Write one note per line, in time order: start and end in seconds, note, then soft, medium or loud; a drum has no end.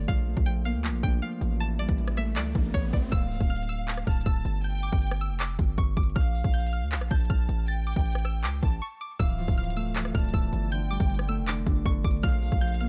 0.00 0.13 D3 loud
0.00 0.27 A3 loud
0.00 1.03 D4 medium
0.08 0.36 A#1 loud
0.08 0.45 F3 loud
0.08 0.44 F5 loud
0.08 kick loud
0.08 closed hi-hat medium
0.08 riser medium
0.28 2.17 A3 medium
0.37 0.76 A#1 loud
0.37 kick medium
0.46 0.83 F3 medium
0.46 0.62 G5 medium
0.46 closed hi-hat medium
0.65 2.23 A#3 loud
0.65 1.01 F5 medium
0.65 closed hi-hat medium
0.75 0.90 D2 loud
0.84 1.21 F3 medium
0.84 clap loud
0.84 closed hi-hat medium
0.89 1.02 A#1 loud
1.03 1.21 A#1 loud
1.03 2.55 D4 medium
1.03 1.19 G5 medium
1.03 kick loud
1.03 closed hi-hat medium
1.22 1.65 F3 medium
1.22 1.58 F5 medium
1.22 closed hi-hat medium
1.41 1.87 A1 loud
1.41 closed hi-hat medium
1.60 1.97 E3 medium
1.60 1.76 A5 medium
1.60 closed hi-hat medium
1.79 3.17 G3 medium
1.79 2.15 D5 medium
1.79 closed hi-hat medium
1.89 2.38 A1 loud
1.89 kick medium
1.89 closed hi-hat medium
1.98 2.35 E3 medium
1.98 closed hi-hat medium
2.08 cross-stick loud
2.08 closed hi-hat medium
2.17 5.50 A3 medium
2.17 2.33 E5 medium
2.17 cross-stick medium
2.17 closed hi-hat medium
2.36 2.54 C#2 loud
2.36 2.73 E3 medium
2.36 2.72 D5 medium
2.36 clap loud
2.36 closed hi-hat medium
2.55 2.73 A1 loud
2.55 5.35 D4 medium
2.55 kick loud
2.55 closed hi-hat medium
2.74 2.92 A1 loud
2.74 3.17 E3 medium
2.74 2.90 C#5 medium
2.74 kick medium
2.74 closed hi-hat medium
2.93 3.11 A1 loud
2.93 3.09 D5 medium
2.93 kick loud
2.93 closed hi-hat medium
2.93 open hi-hat medium
3.03 closed hi-hat soft
3.12 3.33 D1 loud
3.12 4.03 F5 loud
3.12 3.48 E6 loud
3.12 kick loud
3.12 closed hi-hat medium
3.31 3.40 C#1 loud
3.31 open hi-hat medium
3.41 4.04 D1 loud
3.41 kick loud
3.50 3.66 F6 medium
3.50 closed hi-hat medium
3.56 closed hi-hat medium
3.63 closed hi-hat medium
3.69 4.05 E6 medium
3.69 closed hi-hat medium
3.88 clap loud
3.88 closed hi-hat medium
3.97 cross-stick medium
4.07 4.25 D1 loud
4.07 4.61 A5 medium
4.07 4.23 F6 medium
4.07 kick loud
4.07 closed hi-hat medium
4.12 closed hi-hat medium
4.17 closed hi-hat medium
4.21 closed hi-hat medium
4.26 4.44 D1 loud
4.26 4.62 E6 medium
4.26 kick loud
4.26 closed hi-hat medium
4.45 4.91 G1 loud
4.45 closed hi-hat medium
4.64 5.36 G5 loud
4.64 4.80 G6 medium
4.64 closed hi-hat medium
4.83 5.19 D6 medium
4.83 open hi-hat loud
4.92 5.32 G1 loud
4.92 kick loud
5.02 closed hi-hat medium
5.07 closed hi-hat medium
5.11 cross-stick loud
5.11 closed hi-hat medium
5.16 closed hi-hat soft
5.21 5.37 E6 medium
5.21 closed hi-hat medium
5.30 5.57 F1 loud
5.40 5.76 D6 medium
5.40 clap loud
5.40 closed hi-hat medium
5.59 5.77 G1 loud
5.59 kick loud
5.59 closed hi-hat medium
5.78 5.96 G1 loud
5.78 5.94 C#6 medium
5.78 kick loud
5.78 closed hi-hat medium
5.97 6.15 G1 loud
5.97 6.13 D6 medium
5.97 kick loud
5.97 closed hi-hat medium
6.03 closed hi-hat medium
6.10 closed hi-hat soft
6.16 6.43 A#1 loud
6.16 7.07 F5 loud
6.16 6.51 F6 loud
6.16 kick loud
6.16 closed hi-hat medium
6.35 open hi-hat loud
6.44 6.84 A#1 loud
6.44 kick loud
6.54 6.70 G6 medium
6.54 closed hi-hat medium
6.60 closed hi-hat medium
6.67 closed hi-hat medium
6.73 7.09 F6 medium
6.73 closed hi-hat medium
6.82 6.98 D2 loud
6.92 clap loud
6.92 closed hi-hat medium
6.97 7.10 A#1 loud
7.01 cross-stick medium
7.11 7.29 A#1 loud
7.11 7.64 A5 medium
7.11 7.27 G6 medium
7.11 kick loud
7.11 closed hi-hat medium
7.16 closed hi-hat medium
7.20 closed hi-hat medium
7.25 closed hi-hat medium
7.30 7.48 A#1 loud
7.30 7.66 F6 medium
7.30 kick loud
7.30 closed hi-hat medium
7.49 7.94 A1 loud
7.49 closed hi-hat medium
7.68 8.59 G5 loud
7.68 7.84 A6 medium
7.68 closed hi-hat medium
7.87 8.22 D6 medium
7.87 closed hi-hat medium
7.87 open hi-hat loud
7.93 8.45 A1 loud
7.93 kick medium
7.93 closed hi-hat medium
7.99 closed hi-hat medium
8.06 closed hi-hat medium
8.12 cross-stick medium
8.12 closed hi-hat medium
8.18 closed hi-hat medium
8.25 8.41 E6 medium
8.25 cross-stick medium
8.25 closed hi-hat medium
8.44 8.62 C#2 loud
8.44 8.79 D6 medium
8.44 clap loud
8.44 closed hi-hat medium
8.63 8.81 A1 loud
8.63 8.81 A5 medium
8.63 kick loud
8.63 closed hi-hat loud
8.82 8.98 C#6 medium
9.01 9.17 D6 medium
9.19 9.40 D1 loud
9.19 9.56 E3 medium
9.19 10.11 F5 loud
9.19 9.55 E6 loud
9.19 kick loud
9.19 closed hi-hat medium
9.39 9.48 C#1 loud
9.39 10.77 F3 medium
9.39 open hi-hat loud
9.48 10.12 D1 loud
9.48 kick loud
9.58 9.94 E3 medium
9.58 9.73 F6 medium
9.58 closed hi-hat soft
9.64 closed hi-hat medium
9.70 closed hi-hat medium
9.76 11.28 A3 medium
9.76 10.12 E6 medium
9.76 closed hi-hat medium
9.95 10.32 E3 medium
9.95 clap loud
9.95 closed hi-hat medium
10.05 cross-stick medium
10.15 10.33 D1 loud
10.15 11.66 D4 medium
10.15 10.68 A5 medium
10.15 10.31 F6 medium
10.15 kick loud
10.15 closed hi-hat medium
10.19 closed hi-hat medium
10.24 closed hi-hat medium
10.29 closed hi-hat medium
10.33 10.52 D1 loud
10.33 10.77 E3 medium
10.33 10.69 E6 medium
10.33 kick loud
10.33 closed hi-hat medium
10.53 10.98 G1 loud
10.53 closed hi-hat medium
10.72 11.08 D3 medium
10.72 11.44 G5 loud
10.72 10.88 G6 medium
10.72 closed hi-hat medium
10.91 11.15 G3 medium
10.91 11.26 D6 medium
10.91 open hi-hat loud
11.00 11.40 G1 loud
11.00 kick loud
11.10 11.46 D3 medium
11.10 closed hi-hat medium
11.14 closed hi-hat medium
11.19 cross-stick loud
11.19 closed hi-hat medium
11.24 closed hi-hat medium
11.28 12.42 A3 loud
11.28 11.44 E6 medium
11.28 closed hi-hat loud
11.38 11.65 F1 loud
11.47 11.84 D3 medium
11.47 11.83 D6 medium
11.47 clap loud
11.47 closed hi-hat medium
11.67 11.85 G1 loud
11.67 12.89 D4 medium
11.67 kick loud
11.67 closed hi-hat medium
11.85 12.04 G1 loud
11.85 12.28 D3 loud
11.85 12.01 C#6 medium
11.85 kick loud
11.85 closed hi-hat medium
12.04 12.23 G1 loud
12.04 12.20 D6 medium
12.04 kick loud
12.04 closed hi-hat medium
12.11 closed hi-hat medium
12.17 closed hi-hat soft
12.23 12.51 A#1 loud
12.23 12.60 F3 loud
12.23 12.89 F5 loud
12.23 12.59 F6 loud
12.23 kick loud
12.23 closed hi-hat medium
12.43 12.89 A3 medium
12.43 open hi-hat loud
12.52 12.89 A#1 loud
12.52 kick loud
12.61 12.89 F3 medium
12.61 12.77 G6 medium
12.61 closed hi-hat medium
12.68 closed hi-hat medium
12.74 closed hi-hat medium
12.80 12.89 A#3 loud
12.80 12.89 F6 medium
12.80 closed hi-hat medium